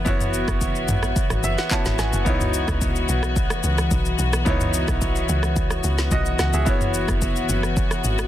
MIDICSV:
0, 0, Header, 1, 5, 480
1, 0, Start_track
1, 0, Key_signature, 4, "minor"
1, 0, Tempo, 550459
1, 53, Time_signature, 4, 2, 24, 8
1, 7216, End_track
2, 0, Start_track
2, 0, Title_t, "Grand piano"
2, 0, Program_c, 0, 0
2, 0, Control_c, 0, 64, 127
2, 41, Note_on_c, 0, 59, 75
2, 50, Note_on_c, 0, 64, 69
2, 61, Note_on_c, 0, 66, 68
2, 71, Note_on_c, 0, 73, 82
2, 1256, Note_on_c, 0, 76, 73
2, 1371, Note_off_c, 0, 76, 0
2, 1380, Note_on_c, 0, 78, 74
2, 1458, Note_off_c, 0, 59, 0
2, 1463, Note_off_c, 0, 64, 0
2, 1468, Note_off_c, 0, 66, 0
2, 1474, Note_off_c, 0, 73, 0
2, 1486, Note_off_c, 0, 78, 0
2, 1487, Note_on_c, 0, 59, 61
2, 1491, Note_on_c, 0, 64, 54
2, 1494, Note_on_c, 0, 81, 73
2, 1496, Note_on_c, 0, 66, 57
2, 1501, Note_on_c, 0, 73, 64
2, 1717, Note_off_c, 0, 81, 0
2, 1734, Note_on_c, 0, 80, 68
2, 1947, Note_off_c, 0, 59, 0
2, 1957, Note_off_c, 0, 80, 0
2, 1960, Note_on_c, 0, 59, 75
2, 1967, Note_off_c, 0, 64, 0
2, 1970, Note_on_c, 0, 63, 68
2, 1975, Note_off_c, 0, 66, 0
2, 1977, Note_off_c, 0, 73, 0
2, 1980, Note_on_c, 0, 64, 69
2, 1984, Control_c, 0, 64, 0
2, 1990, Note_on_c, 0, 73, 84
2, 2156, Control_c, 0, 64, 127
2, 3852, Note_off_c, 0, 59, 0
2, 3857, Note_off_c, 0, 63, 0
2, 3862, Note_off_c, 0, 64, 0
2, 3867, Note_off_c, 0, 73, 0
2, 3880, Note_on_c, 0, 59, 74
2, 3890, Note_on_c, 0, 63, 69
2, 3900, Note_on_c, 0, 64, 69
2, 3911, Note_on_c, 0, 73, 85
2, 5314, Note_off_c, 0, 73, 0
2, 5335, Note_on_c, 0, 75, 69
2, 5341, Note_on_c, 0, 66, 62
2, 5562, Note_off_c, 0, 75, 0
2, 5565, Note_off_c, 0, 66, 0
2, 5575, Note_on_c, 0, 78, 69
2, 5693, Note_off_c, 0, 78, 0
2, 5700, Note_on_c, 0, 76, 62
2, 5705, Note_on_c, 0, 68, 54
2, 5772, Note_off_c, 0, 59, 0
2, 5777, Note_off_c, 0, 63, 0
2, 5782, Note_off_c, 0, 64, 0
2, 5799, Note_on_c, 0, 59, 74
2, 5809, Note_on_c, 0, 64, 69
2, 5820, Note_on_c, 0, 66, 66
2, 5823, Control_c, 0, 64, 0
2, 5830, Note_on_c, 0, 73, 86
2, 5927, Note_off_c, 0, 76, 0
2, 5930, Note_off_c, 0, 68, 0
2, 5972, Control_c, 0, 64, 127
2, 7216, Note_off_c, 0, 59, 0
2, 7216, Note_off_c, 0, 64, 0
2, 7216, Note_off_c, 0, 66, 0
2, 7216, Note_off_c, 0, 73, 0
2, 7216, End_track
3, 0, Start_track
3, 0, Title_t, "String section"
3, 0, Program_c, 1, 48
3, 0, Note_on_c, 1, 52, 81
3, 0, Note_on_c, 1, 59, 73
3, 51, Note_on_c, 1, 66, 87
3, 1939, Note_off_c, 1, 52, 0
3, 1974, Note_on_c, 1, 52, 80
3, 5777, Note_off_c, 1, 66, 0
3, 5779, Note_off_c, 1, 52, 0
3, 5781, Note_off_c, 1, 59, 0
3, 5812, Note_on_c, 1, 59, 76
3, 5813, Note_on_c, 1, 66, 90
3, 5815, Note_on_c, 1, 52, 78
3, 7216, Note_off_c, 1, 52, 0
3, 7216, Note_off_c, 1, 59, 0
3, 7216, Note_off_c, 1, 66, 0
3, 7216, End_track
4, 0, Start_track
4, 0, Title_t, "Log drum bass"
4, 0, Program_c, 2, 39
4, 54, Note_on_c, 2, 30, 106
4, 391, Note_off_c, 2, 30, 0
4, 417, Note_on_c, 2, 30, 80
4, 746, Note_off_c, 2, 30, 0
4, 773, Note_on_c, 2, 32, 92
4, 995, Note_off_c, 2, 32, 0
4, 1138, Note_on_c, 2, 32, 94
4, 1245, Note_off_c, 2, 32, 0
4, 1253, Note_on_c, 2, 30, 86
4, 1369, Note_off_c, 2, 30, 0
4, 1618, Note_on_c, 2, 32, 93
4, 1725, Note_off_c, 2, 32, 0
4, 1733, Note_on_c, 2, 32, 81
4, 1849, Note_off_c, 2, 32, 0
4, 1857, Note_on_c, 2, 30, 89
4, 1973, Note_on_c, 2, 37, 105
4, 1986, Note_off_c, 2, 30, 0
4, 2311, Note_off_c, 2, 37, 0
4, 2338, Note_on_c, 2, 37, 96
4, 2666, Note_off_c, 2, 37, 0
4, 2694, Note_on_c, 2, 35, 93
4, 3031, Note_off_c, 2, 35, 0
4, 3173, Note_on_c, 2, 37, 90
4, 3395, Note_off_c, 2, 37, 0
4, 3411, Note_on_c, 2, 35, 96
4, 3634, Note_off_c, 2, 35, 0
4, 3652, Note_on_c, 2, 35, 100
4, 3875, Note_off_c, 2, 35, 0
4, 3893, Note_on_c, 2, 37, 119
4, 4231, Note_off_c, 2, 37, 0
4, 4257, Note_on_c, 2, 35, 85
4, 4586, Note_off_c, 2, 35, 0
4, 4614, Note_on_c, 2, 37, 101
4, 5059, Note_off_c, 2, 37, 0
4, 5093, Note_on_c, 2, 37, 92
4, 5315, Note_off_c, 2, 37, 0
4, 5331, Note_on_c, 2, 35, 91
4, 5554, Note_off_c, 2, 35, 0
4, 5574, Note_on_c, 2, 37, 96
4, 5689, Note_off_c, 2, 37, 0
4, 5698, Note_on_c, 2, 37, 85
4, 5812, Note_on_c, 2, 30, 114
4, 5825, Note_off_c, 2, 37, 0
4, 6150, Note_off_c, 2, 30, 0
4, 6178, Note_on_c, 2, 30, 87
4, 6507, Note_off_c, 2, 30, 0
4, 6534, Note_on_c, 2, 30, 91
4, 6871, Note_off_c, 2, 30, 0
4, 7013, Note_on_c, 2, 32, 95
4, 7216, Note_off_c, 2, 32, 0
4, 7216, End_track
5, 0, Start_track
5, 0, Title_t, "Drums"
5, 53, Note_on_c, 9, 36, 116
5, 54, Note_on_c, 9, 82, 63
5, 141, Note_off_c, 9, 36, 0
5, 141, Note_off_c, 9, 82, 0
5, 180, Note_on_c, 9, 45, 55
5, 180, Note_on_c, 9, 82, 56
5, 267, Note_off_c, 9, 45, 0
5, 267, Note_off_c, 9, 82, 0
5, 294, Note_on_c, 9, 82, 93
5, 381, Note_off_c, 9, 82, 0
5, 418, Note_on_c, 9, 36, 88
5, 419, Note_on_c, 9, 82, 54
5, 420, Note_on_c, 9, 37, 97
5, 505, Note_off_c, 9, 36, 0
5, 506, Note_off_c, 9, 82, 0
5, 507, Note_off_c, 9, 37, 0
5, 533, Note_on_c, 9, 82, 81
5, 535, Note_on_c, 9, 36, 92
5, 620, Note_off_c, 9, 82, 0
5, 622, Note_off_c, 9, 36, 0
5, 658, Note_on_c, 9, 82, 45
5, 745, Note_off_c, 9, 82, 0
5, 773, Note_on_c, 9, 45, 95
5, 773, Note_on_c, 9, 82, 98
5, 860, Note_off_c, 9, 45, 0
5, 860, Note_off_c, 9, 82, 0
5, 895, Note_on_c, 9, 37, 88
5, 899, Note_on_c, 9, 82, 53
5, 982, Note_off_c, 9, 37, 0
5, 986, Note_off_c, 9, 82, 0
5, 1013, Note_on_c, 9, 36, 119
5, 1015, Note_on_c, 9, 82, 77
5, 1100, Note_off_c, 9, 36, 0
5, 1102, Note_off_c, 9, 82, 0
5, 1136, Note_on_c, 9, 37, 90
5, 1138, Note_on_c, 9, 82, 48
5, 1223, Note_off_c, 9, 37, 0
5, 1226, Note_off_c, 9, 82, 0
5, 1253, Note_on_c, 9, 82, 82
5, 1340, Note_off_c, 9, 82, 0
5, 1379, Note_on_c, 9, 82, 50
5, 1382, Note_on_c, 9, 38, 67
5, 1466, Note_off_c, 9, 82, 0
5, 1469, Note_off_c, 9, 38, 0
5, 1493, Note_on_c, 9, 36, 90
5, 1493, Note_on_c, 9, 82, 76
5, 1494, Note_on_c, 9, 39, 91
5, 1580, Note_off_c, 9, 36, 0
5, 1580, Note_off_c, 9, 82, 0
5, 1581, Note_off_c, 9, 39, 0
5, 1617, Note_on_c, 9, 82, 53
5, 1621, Note_on_c, 9, 38, 70
5, 1704, Note_off_c, 9, 82, 0
5, 1708, Note_off_c, 9, 38, 0
5, 1734, Note_on_c, 9, 82, 87
5, 1735, Note_on_c, 9, 37, 91
5, 1735, Note_on_c, 9, 38, 62
5, 1821, Note_off_c, 9, 82, 0
5, 1822, Note_off_c, 9, 37, 0
5, 1822, Note_off_c, 9, 38, 0
5, 1858, Note_on_c, 9, 82, 61
5, 1945, Note_off_c, 9, 82, 0
5, 1973, Note_on_c, 9, 82, 61
5, 1974, Note_on_c, 9, 36, 113
5, 2061, Note_off_c, 9, 36, 0
5, 2061, Note_off_c, 9, 82, 0
5, 2100, Note_on_c, 9, 45, 57
5, 2100, Note_on_c, 9, 82, 57
5, 2187, Note_off_c, 9, 45, 0
5, 2187, Note_off_c, 9, 82, 0
5, 2213, Note_on_c, 9, 82, 95
5, 2301, Note_off_c, 9, 82, 0
5, 2338, Note_on_c, 9, 36, 89
5, 2338, Note_on_c, 9, 82, 55
5, 2339, Note_on_c, 9, 37, 95
5, 2425, Note_off_c, 9, 36, 0
5, 2425, Note_off_c, 9, 82, 0
5, 2426, Note_off_c, 9, 37, 0
5, 2454, Note_on_c, 9, 82, 82
5, 2455, Note_on_c, 9, 36, 93
5, 2541, Note_off_c, 9, 82, 0
5, 2542, Note_off_c, 9, 36, 0
5, 2578, Note_on_c, 9, 82, 46
5, 2665, Note_off_c, 9, 82, 0
5, 2693, Note_on_c, 9, 82, 102
5, 2780, Note_off_c, 9, 82, 0
5, 2815, Note_on_c, 9, 37, 91
5, 2819, Note_on_c, 9, 82, 51
5, 2902, Note_off_c, 9, 37, 0
5, 2906, Note_off_c, 9, 82, 0
5, 2933, Note_on_c, 9, 36, 127
5, 2934, Note_on_c, 9, 82, 77
5, 3020, Note_off_c, 9, 36, 0
5, 3021, Note_off_c, 9, 82, 0
5, 3055, Note_on_c, 9, 37, 100
5, 3057, Note_on_c, 9, 82, 50
5, 3142, Note_off_c, 9, 37, 0
5, 3144, Note_off_c, 9, 82, 0
5, 3170, Note_on_c, 9, 82, 83
5, 3257, Note_off_c, 9, 82, 0
5, 3297, Note_on_c, 9, 82, 50
5, 3299, Note_on_c, 9, 37, 94
5, 3384, Note_off_c, 9, 82, 0
5, 3386, Note_off_c, 9, 37, 0
5, 3411, Note_on_c, 9, 82, 76
5, 3412, Note_on_c, 9, 36, 89
5, 3498, Note_off_c, 9, 82, 0
5, 3499, Note_off_c, 9, 36, 0
5, 3535, Note_on_c, 9, 82, 52
5, 3622, Note_off_c, 9, 82, 0
5, 3652, Note_on_c, 9, 82, 86
5, 3739, Note_off_c, 9, 82, 0
5, 3776, Note_on_c, 9, 82, 60
5, 3778, Note_on_c, 9, 37, 100
5, 3863, Note_off_c, 9, 82, 0
5, 3865, Note_off_c, 9, 37, 0
5, 3891, Note_on_c, 9, 82, 64
5, 3893, Note_on_c, 9, 36, 108
5, 3979, Note_off_c, 9, 82, 0
5, 3980, Note_off_c, 9, 36, 0
5, 4017, Note_on_c, 9, 45, 59
5, 4017, Note_on_c, 9, 82, 56
5, 4105, Note_off_c, 9, 45, 0
5, 4105, Note_off_c, 9, 82, 0
5, 4132, Note_on_c, 9, 82, 98
5, 4219, Note_off_c, 9, 82, 0
5, 4257, Note_on_c, 9, 36, 87
5, 4257, Note_on_c, 9, 82, 55
5, 4258, Note_on_c, 9, 37, 93
5, 4344, Note_off_c, 9, 36, 0
5, 4344, Note_off_c, 9, 82, 0
5, 4345, Note_off_c, 9, 37, 0
5, 4373, Note_on_c, 9, 82, 78
5, 4374, Note_on_c, 9, 36, 89
5, 4460, Note_off_c, 9, 82, 0
5, 4461, Note_off_c, 9, 36, 0
5, 4498, Note_on_c, 9, 82, 46
5, 4585, Note_off_c, 9, 82, 0
5, 4612, Note_on_c, 9, 82, 99
5, 4699, Note_off_c, 9, 82, 0
5, 4735, Note_on_c, 9, 37, 92
5, 4738, Note_on_c, 9, 82, 51
5, 4822, Note_off_c, 9, 37, 0
5, 4825, Note_off_c, 9, 82, 0
5, 4852, Note_on_c, 9, 36, 122
5, 4853, Note_on_c, 9, 82, 81
5, 4940, Note_off_c, 9, 36, 0
5, 4940, Note_off_c, 9, 82, 0
5, 4975, Note_on_c, 9, 37, 92
5, 4977, Note_on_c, 9, 82, 47
5, 5062, Note_off_c, 9, 37, 0
5, 5064, Note_off_c, 9, 82, 0
5, 5090, Note_on_c, 9, 82, 82
5, 5177, Note_off_c, 9, 82, 0
5, 5217, Note_on_c, 9, 82, 50
5, 5220, Note_on_c, 9, 38, 68
5, 5304, Note_off_c, 9, 82, 0
5, 5307, Note_off_c, 9, 38, 0
5, 5331, Note_on_c, 9, 82, 76
5, 5332, Note_on_c, 9, 36, 89
5, 5419, Note_off_c, 9, 36, 0
5, 5419, Note_off_c, 9, 82, 0
5, 5456, Note_on_c, 9, 82, 50
5, 5544, Note_off_c, 9, 82, 0
5, 5573, Note_on_c, 9, 37, 86
5, 5573, Note_on_c, 9, 38, 65
5, 5573, Note_on_c, 9, 82, 88
5, 5660, Note_off_c, 9, 82, 0
5, 5661, Note_off_c, 9, 37, 0
5, 5661, Note_off_c, 9, 38, 0
5, 5697, Note_on_c, 9, 82, 59
5, 5784, Note_off_c, 9, 82, 0
5, 5812, Note_on_c, 9, 82, 63
5, 5813, Note_on_c, 9, 36, 112
5, 5899, Note_off_c, 9, 82, 0
5, 5900, Note_off_c, 9, 36, 0
5, 5939, Note_on_c, 9, 45, 58
5, 5939, Note_on_c, 9, 82, 55
5, 6026, Note_off_c, 9, 45, 0
5, 6026, Note_off_c, 9, 82, 0
5, 6053, Note_on_c, 9, 82, 90
5, 6140, Note_off_c, 9, 82, 0
5, 6178, Note_on_c, 9, 36, 86
5, 6178, Note_on_c, 9, 82, 56
5, 6179, Note_on_c, 9, 37, 93
5, 6265, Note_off_c, 9, 36, 0
5, 6266, Note_off_c, 9, 37, 0
5, 6266, Note_off_c, 9, 82, 0
5, 6293, Note_on_c, 9, 82, 77
5, 6295, Note_on_c, 9, 36, 93
5, 6380, Note_off_c, 9, 82, 0
5, 6382, Note_off_c, 9, 36, 0
5, 6419, Note_on_c, 9, 82, 44
5, 6506, Note_off_c, 9, 82, 0
5, 6534, Note_on_c, 9, 82, 100
5, 6621, Note_off_c, 9, 82, 0
5, 6656, Note_on_c, 9, 37, 89
5, 6660, Note_on_c, 9, 82, 52
5, 6744, Note_off_c, 9, 37, 0
5, 6747, Note_off_c, 9, 82, 0
5, 6774, Note_on_c, 9, 36, 125
5, 6775, Note_on_c, 9, 82, 75
5, 6861, Note_off_c, 9, 36, 0
5, 6862, Note_off_c, 9, 82, 0
5, 6897, Note_on_c, 9, 37, 94
5, 6900, Note_on_c, 9, 82, 49
5, 6984, Note_off_c, 9, 37, 0
5, 6987, Note_off_c, 9, 82, 0
5, 7013, Note_on_c, 9, 82, 84
5, 7100, Note_off_c, 9, 82, 0
5, 7139, Note_on_c, 9, 82, 48
5, 7142, Note_on_c, 9, 37, 97
5, 7216, Note_off_c, 9, 37, 0
5, 7216, Note_off_c, 9, 82, 0
5, 7216, End_track
0, 0, End_of_file